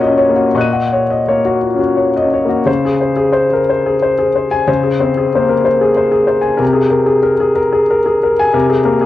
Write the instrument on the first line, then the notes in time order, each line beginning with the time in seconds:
grand piano
Already playing: A#2 A#3 C#4 F4 F#4 C#5 F#5
0.00 D#5
0.07 C#4
0.17 C#5
0.29 A#3
0.36 F#4
0.55 A#2 D#5 C#6 F#6
0.61 D#7
0.73 F#5
0.93 C#5
1.10 D#5
1.28 A#3 C#5
1.45 F#4
1.63 F4
1.75 C#4
1.80 F#4
1.97 C#5
2.17 D#5
2.22 C#4
2.34 C#5
2.45 A#3 F#4
2.66 C#3 C5
2.85 G#4
3.01 C5
3.17 G#4
3.33 C5
3.53 A#4
3.69 C5
3.86 G#4
4.02 C5
4.19 G#4
4.36 C5
4.51 G#5
4.68 C#3 C5
4.84 G#4
5.00 C4 C5
5.17 G#4
5.35 A#3 C5
5.49 A#4
5.65 C5
5.81 G#4
5.97 C5
6.12 G#4
6.27 C5
6.41 G#5
6.57 C3 A#4
6.73 G#4
6.90 A#4
7.06 G#4
7.23 A#4
7.40 G#4
7.55 A#4
7.72 G#4
7.90 A#4
8.06 G#4
8.23 A#4
8.39 G#5
8.54 C3 A#4
8.70 G#4
8.84 A#3 A#4
9.01 G#4